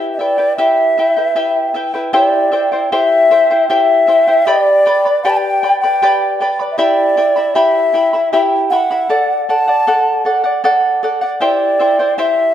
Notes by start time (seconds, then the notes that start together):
Already playing: E4 G4 B4 E5 G5
0.13 E5
0.18 E4 B4 D5 E5 G5
0.38 E4 B4 G5
0.57 E4 G4 B4 E5 G5
0.98 E4 B4 E5 G5
1.17 E4 B4 G5
1.35 E4 G4 B4 E5 G5
1.74 E4 B4 E5 G5
1.94 E4 B4 G5
2.13 E4 G4 C5 D5 E5 G5
2.52 E4 C5 E5 G5
2.72 E4 C5 G5
2.92 E4 G4 C5 E5 G5
3.31 E4 C5 E5 G5
3.51 E4 C5 G5
3.69 E4 G4 C5 E5 G5
4.07 E4 C5 E5 G5
4.27 E4 C5 G5
4.46 G4 B4 D5 G5 B5
4.86 B4 D5 G5 B5
5.05 B4 D5 B5
5.23 G4 B4 D5 G5 B5
5.30 A5
5.37 G5
5.63 B4 D5 G5 B5
5.80 D5 G5 B5
5.85 B4
6.02 G4 B4 D5 G5 B5
6.40 B4 D5 G5 B5
6.59 B4 D5 B5
6.71 E5
6.77 E4 G4 D5 E5 G5 B5
7.17 E4 E5 G5 B5
7.36 E4 E5 B5
7.55 E4 G4 E5 G5 B5
7.94 E4 E5 G5 B5
8.13 E4 E5 B5
8.32 E4 G4 E5 G5 B5
8.70 E4 E5 F#5 G5 B5
8.91 E4 E5 B5
9.09 A4 D5 F#5
9.49 A4 D5 F#5 A5
9.68 D5 F#5
9.87 A4 D5 F#5
10.25 A4 D5 F#5
10.44 D5 F#5
10.64 A4 D5 F#5
11.03 A4 D5 F#5
11.21 D5 F#5
11.40 E4 G4 C5 D5 E5 G5
11.79 E4 C5 E5 G5
11.99 E4 C5 G5
12.18 E4 G4 C5 E5 G5